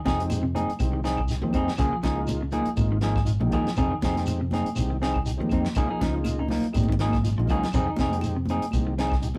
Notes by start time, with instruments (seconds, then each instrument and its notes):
0.05 fingered electric bass F2, clean electric guitar C3 C4 D#4 G#4, kick, snare, closed hi-hat, high conga, shekere
0.20 transistor combo organ G#3 C4 D#4 G4, closed hi-hat
0.30 closed hi-hat, high conga, claves, shekere
0.43 clean electric guitar C3
0.55 clean electric guitar C4 D#4 G#4, closed hi-hat, high conga, low conga, shekere
0.68 muted fingered electric bass stroke, closed hi-hat
0.79 fingered electric bass C2, transistor combo organ G#3 C4 D#4 G4, kick, closed hi-hat, claves, shekere
0.93 clean electric guitar D#3
1.04 clean electric guitar C4 D#4 G#4, snare, closed hi-hat, shekere
1.17 kick, claves
1.28 transistor combo organ D#4 G4, snare, closed hi-hat, shekere
1.41 fingered electric bass D#2, clean electric guitar F3, transistor combo organ G#3 C4 D#4 G4, high conga
1.53 fingered electric bass F2, clean electric guitar C4 D#4 G#4, kick, closed hi-hat, low conga, claves, shekere
1.68 snare
1.77 fingered electric bass C#2, clean electric guitar C#3 F3 A#3 G#4, muted clean electric guitar stroke, kick, closed hi-hat, low conga, claves, shekere
1.93 clean electric guitar F3
2.03 fingered electric bass C#2, clean electric guitar C#3 F3 A#3 D#4 G#4, kick, snare, closed hi-hat, high conga, shekere
2.16 transistor combo organ G#3 A#3 D#4 F4
2.27 closed hi-hat, high conga, claves, shekere
2.42 clean electric guitar C#3
2.51 clean electric guitar F3 A#3 D#4 G#4, closed hi-hat, high conga, low conga, shekere
2.65 closed hi-hat
2.76 fingered electric bass G#1, transistor combo organ G#3 A#3 D#4 F4, kick, closed hi-hat, high conga, claves, shekere
2.92 clean electric guitar D#3
3.01 clean electric guitar F3 A#3 D#4 G#4, snare, closed hi-hat, shekere
3.16 kick, snare, claves
3.25 transistor combo organ D#4 F4, closed hi-hat, shekere
3.40 fingered electric bass A#1, clean electric guitar F3, transistor combo organ G#3 A#3 D#4 G4, high conga
3.52 fingered electric bass D#2, clean electric guitar F3 A#3 D#4 G#4, kick, closed hi-hat, high conga, low conga, claves, shekere
3.67 snare, closed hi-hat
3.76 fingered electric bass F2, clean electric guitar C3 C4 D#4 G#4, kick, closed hi-hat, low conga, claves, shekere
3.92 clean electric guitar D#3
4.02 fingered electric bass F2, clean electric guitar C3 C4 D#4 G#4, kick, snare, closed hi-hat, high conga, shekere
4.14 transistor combo organ G#3 C4 D#4 G4, snare, closed hi-hat, high conga
4.26 closed hi-hat, high conga, claves, shekere
4.41 clean electric guitar C3
4.51 clean electric guitar C4 D#4 G#4, snare, closed hi-hat, high conga, low conga, shekere
4.66 muted fingered electric bass stroke, closed hi-hat
4.75 fingered electric bass C2, transistor combo organ G#3 C4 D#4 G4, kick, closed hi-hat, claves, shekere
4.90 clean electric guitar D#3
5.02 clean electric guitar C4 D#4 G#4, snare, closed hi-hat, shekere
5.14 kick, claves
5.25 transistor combo organ D#4 G4, closed hi-hat, shekere
5.37 fingered electric bass D#2, clean electric guitar F3, transistor combo organ G#3 C4 D#4 G4
5.41 high conga
5.49 fingered electric bass F2, clean electric guitar C4 D#4, kick, closed hi-hat, high conga, low conga, claves, shekere
5.65 snare
5.75 fingered electric bass C#2, clean electric guitar C#3 F3 A#3 D#4 G#4, kick, closed hi-hat, low conga, claves, shekere
5.90 clean electric guitar F3 A#3 D#4 G#4
6.01 fingered electric bass C#2, clean electric guitar C#3 F3 D#4, muted clean electric guitar stroke, kick, snare, closed hi-hat, high conga, shekere
6.12 transistor combo organ G#3 A#3 D#4 F4
6.24 closed hi-hat, high conga, claves, shekere
6.39 clean electric guitar C#3 A#3 D#4, muted clean electric guitar stroke
6.48 clean electric guitar F3 A#3 D#4, muted clean electric guitar stroke, snare, open hi-hat, high conga, low conga, shekere
6.63 muted fingered electric bass stroke, closed hi-hat
6.73 fingered electric bass G#1, transistor combo organ G#3 A#3 D#4 G4, kick, closed hi-hat, high conga, claves, shekere
6.83 high conga
6.89 clean electric guitar D#3, kick, high conga
6.99 clean electric guitar F3 A#3 D#4 G#4, snare, closed hi-hat, high conga, shekere
7.08 high conga
7.12 kick, snare, low conga, claves
7.24 transistor combo organ D#4 F4, closed hi-hat, shekere
7.33 low conga
7.38 fingered electric bass A#1, clean electric guitar F3, transistor combo organ G#3 A#3 D#4 F4, low conga
7.47 fingered electric bass C#2, clean electric guitar F3 A#3 D#4, kick, closed hi-hat, low conga, claves, shekere
7.51 clean electric guitar G#4, low conga
7.63 snare, closed hi-hat, low conga
7.72 fingered electric bass F2, clean electric guitar C3 C4 D#4 G#4, kick, closed hi-hat, claves, shekere
7.87 clean electric guitar D#3 D#4
7.96 fingered electric bass F2, clean electric guitar C3 C4 D#4, kick, snare, closed hi-hat, high conga, shekere
8.01 clean electric guitar G#4
8.10 transistor combo organ G#3 C4 D#4 G4, closed hi-hat, high conga
8.21 closed hi-hat, high conga, claves, shekere
8.36 clean electric guitar C3
8.45 closed hi-hat, high conga, low conga, shekere
8.50 clean electric guitar C4 D#4 G#4
8.62 muted fingered electric bass stroke, closed hi-hat
8.71 fingered electric bass C2, transistor combo organ G#3 C4 D#4 G4, kick, closed hi-hat, high conga, claves, shekere
8.87 clean electric guitar D#3
8.98 clean electric guitar C4 D#4 G#4, snare, closed hi-hat, shekere
9.10 kick, snare, claves
9.22 transistor combo organ D#4 G4, closed hi-hat, shekere
9.34 high conga